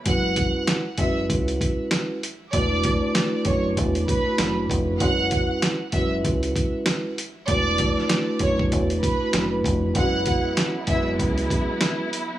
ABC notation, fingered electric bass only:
X:1
M:4/4
L:1/16
Q:"Swing 16ths" 1/4=97
K:F#m
V:1 name="Fingered electric bass" clef=bass
F,,,3 z3 F,,,2 C,,2 z6 | E,,,3 z3 F,,,2 E,,,2 z2 F,,,2 ^E,,,2 | F,,,3 z3 F,,,2 C,,2 z6 | E,,,3 z3 F,,,2 E,,,2 z2 F,,,2 ^E,,,2 |
F,,,3 z3 F,,,2 C,,2 z6 |]